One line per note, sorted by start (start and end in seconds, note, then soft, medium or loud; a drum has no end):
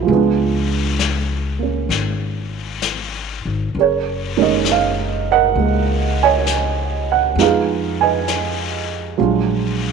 0.00 3.72 F3 soft
0.00 0.12 D#4 soft
0.00 0.17 E4 soft
0.00 0.11 G#4 soft
0.00 0.10 A#4 soft
0.00 0.10 B4 soft
0.07 1.86 C#2 medium
0.07 3.74 G#3 soft
0.07 brush sweep soft
0.11 3.76 B3 soft
0.11 3.78 D4 medium
0.99 snare soft
0.99 hi-hat pedal soft
1.59 3.75 A#3 soft
1.59 3.76 C#4 soft
1.89 3.41 G#1 medium
1.89 brush sweep soft
1.89 snare soft
2.82 snare soft
2.82 hi-hat pedal soft
3.45 3.73 G#1 soft
3.74 5.53 F#1 medium
3.74 brush sweep soft
3.79 5.55 G#4 soft
3.79 5.30 A#4 soft
3.79 4.42 C#5 medium
4.37 7.37 D#3 soft
4.37 5.56 G#3 soft
4.37 5.60 A#3 soft
4.37 7.38 C#4 soft
4.42 4.67 D#5 medium
4.65 snare soft
4.65 hi-hat pedal soft
4.72 5.26 F5 medium
5.31 7.06 A#4 medium
5.31 6.23 D#5 medium
5.31 6.24 F#5 medium
5.55 7.33 C#2 medium
5.55 7.36 G#3 soft
5.55 brush sweep soft
5.61 7.40 A#3 soft
6.23 7.36 C#5 medium
6.23 7.36 D#5 medium
6.23 7.07 G#5 medium
6.46 snare soft
6.46 hi-hat pedal soft
7.12 7.37 F#5 medium
7.35 9.13 F2 medium
7.35 9.18 F3 soft
7.35 9.17 G#3 soft
7.35 9.18 B3 soft
7.35 9.19 D#4 soft
7.35 brush sweep soft
7.35 snare soft
7.41 9.16 G#4 soft
7.41 8.01 B4 soft
7.41 7.97 F5 medium
8.01 9.15 B4 soft
8.01 9.16 D#5 soft
8.01 9.76 G#5 medium
8.28 snare soft
8.28 hi-hat pedal soft
9.18 9.92 A#1 medium
9.18 9.92 F#3 soft
9.18 9.92 G#3 soft
9.18 9.92 D4 soft
9.18 9.92 F4 soft
9.18 brush sweep soft